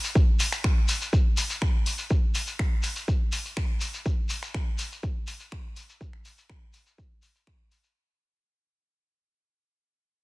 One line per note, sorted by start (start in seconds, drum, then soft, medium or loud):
0.04 shekere medium
0.15 kick loud
0.15 shekere soft
0.40 open hi-hat loud
0.40 shekere medium
0.52 finger snap soft
0.52 shekere medium
0.64 finger snap loud
0.64 kick loud
0.64 shekere soft
0.88 open hi-hat medium
0.88 shekere medium
1.01 shekere medium
1.13 kick loud
1.13 shekere soft
1.37 open hi-hat loud
1.37 shekere loud
1.50 shekere medium
1.62 finger snap loud
1.62 kick loud
1.86 open hi-hat medium
1.86 shekere medium
1.98 shekere medium
2.10 kick loud
2.10 shekere soft
2.35 open hi-hat loud
2.35 shekere medium
2.47 shekere medium
2.59 finger snap loud
2.59 kick loud
2.59 shekere soft
2.83 open hi-hat medium
2.83 shekere medium
2.96 shekere soft
3.08 kick loud
3.08 shekere soft
3.32 open hi-hat loud
3.32 shekere loud
3.45 shekere soft
3.57 finger snap loud
3.57 kick loud
3.57 shekere soft
3.81 open hi-hat medium
3.81 shekere medium
3.94 shekere medium
4.05 kick loud
4.05 shekere soft
4.29 open hi-hat loud
4.29 shekere medium
4.43 finger snap soft
4.43 shekere medium
4.54 finger snap loud
4.54 kick loud
4.78 open hi-hat medium
4.78 shekere medium
4.92 shekere medium
5.03 kick loud
5.03 shekere soft
5.27 open hi-hat loud
5.27 shekere medium
5.40 shekere medium
5.52 finger snap loud
5.52 kick loud
5.76 open hi-hat medium
5.76 shekere medium
5.89 shekere soft
6.01 kick loud
6.01 shekere soft
6.13 finger snap soft
6.25 open hi-hat loud
6.25 shekere medium
6.38 shekere medium
6.50 finger snap loud
6.50 kick loud
6.73 open hi-hat medium
6.73 shekere medium
6.86 shekere medium
6.98 kick loud
6.98 shekere soft
7.22 open hi-hat loud
7.22 shekere medium
7.35 shekere soft
7.47 finger snap loud
7.47 kick loud
7.71 open hi-hat medium
7.71 shekere medium
7.84 shekere medium